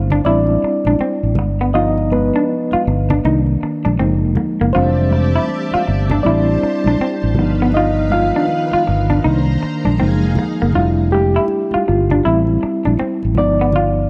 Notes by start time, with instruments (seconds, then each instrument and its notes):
Already playing: fingered electric bass G1, reed electric piano G3 A3 C4 D4 E4 C5
0.10 clean electric guitar D4, low conga
0.25 fingered electric bass A1, reed electric piano G3 C4 D4 E4 D5, clean electric guitar E4, muted conga
0.47 muted conga
0.63 muted fingered electric bass stroke, muted clean electric guitar stroke
0.85 fingered electric bass A#1, clean electric guitar D4, high conga
0.99 clean electric guitar C4, muted fingered electric bass stroke, muted conga
1.23 fingered electric bass A1
1.35 fingered electric bass G1, muted clean electric guitar stroke, high conga, low conga
1.61 clean electric guitar B3
1.74 reed electric piano F3 B3 D#4 D#5, clean electric guitar F4
1.98 muted conga
2.12 reed electric piano B3 B4, muted clean electric guitar stroke, high conga
2.36 clean electric guitar D4
2.72 clean electric guitar F4, muted fingered electric bass stroke, muted conga, high conga
2.87 fingered electric bass G1, muted clean electric guitar stroke
3.10 clean electric guitar D4, low conga
3.24 fingered electric bass C2, reed electric piano D#3 A#3 D4, clean electric guitar D#4, muted conga
3.46 muted conga
3.62 muted fingered electric bass stroke, muted clean electric guitar stroke
3.85 fingered electric bass A#1, clean electric guitar D4, high conga
3.99 fingered electric bass F#1, reed electric piano F3 G#3 A#3 D#4, clean electric guitar C4
4.24 fingered electric bass F1
4.35 muted clean electric guitar stroke, high conga, low conga
4.61 fingered electric bass F#1, clean electric guitar A#3
4.73 fingered electric bass F1, reed electric piano E3 G3 A3 C4 D4 C5, clean electric guitar F4, string machine G4 D5 E5 A5, muted conga
4.98 muted conga
5.11 muted clean electric guitar stroke, high conga
5.36 clean electric guitar E4
5.49 muted conga
5.71 clean electric guitar F4, muted fingered electric bass stroke, high conga
5.87 fingered electric bass G1, muted clean electric guitar stroke
6.10 clean electric guitar D4, low conga
6.23 fingered electric bass A1, reed electric piano G3 C4 D4 E4 D5, clean electric guitar E4, string machine G4 C5 A5, muted conga
6.63 muted fingered electric bass stroke, muted clean electric guitar stroke
6.84 fingered electric bass A#1, clean electric guitar D4, high conga
6.98 clean electric guitar C4, muted fingered electric bass stroke, muted conga
7.22 fingered electric bass A1, muted conga
7.35 fingered electric bass G1, string machine D#3 B4 F5, reed electric piano F3 B3, high conga, low conga
7.39 reed electric piano D#4, muted clean electric guitar stroke
7.62 clean electric guitar B3
7.72 reed electric piano D#5, muted conga
7.76 reed electric piano D#4, clean electric guitar F4
7.97 muted conga
8.10 reed electric piano F4 F5, muted clean electric guitar stroke, high conga
8.36 clean electric guitar D4
8.48 muted conga
8.71 clean electric guitar F4, muted fingered electric bass stroke, high conga
8.87 fingered electric bass G1, muted clean electric guitar stroke
9.10 clean electric guitar D4, low conga
9.23 fingered electric bass C2, reed electric piano D#3 A#3 D4, clean electric guitar D#4, string machine C5 A#5, muted conga
9.46 muted conga
9.63 muted clean electric guitar stroke, muted fingered electric bass stroke
9.85 fingered electric bass A#1, clean electric guitar D4, high conga
9.98 fingered electric bass F#1, reed electric piano F3 G#3 A#3 D#4, clean electric guitar C4, string machine D#4 G#4 F5, muted conga
10.23 fingered electric bass F1, muted conga
10.35 muted clean electric guitar stroke, high conga, low conga
10.62 fingered electric bass F#1, clean electric guitar A#3
10.72 fingered electric bass F1, reed electric piano G3 A3 D4 E4, clean electric guitar F4, low conga
11.11 reed electric piano G4, muted clean electric guitar stroke, high conga
11.36 clean electric guitar E4
11.48 muted conga
11.71 clean electric guitar F4, muted conga, high conga
11.75 muted fingered electric bass stroke
11.88 fingered electric bass G1, reed electric piano F4, muted clean electric guitar stroke
12.10 clean electric guitar D4, low conga
12.25 fingered electric bass A1, reed electric piano G3 C4 E4, clean electric guitar E4
12.47 muted conga
12.63 muted clean electric guitar stroke, muted fingered electric bass stroke
12.85 fingered electric bass A#1, clean electric guitar D4, high conga
12.99 clean electric guitar C4, muted fingered electric bass stroke, muted conga
13.23 fingered electric bass A1, muted conga
13.35 reed electric piano F3 B3 D#4 D5, muted clean electric guitar stroke, high conga, low conga
13.39 fingered electric bass G1
13.61 clean electric guitar B3
13.72 clean electric guitar F4, muted conga, low conga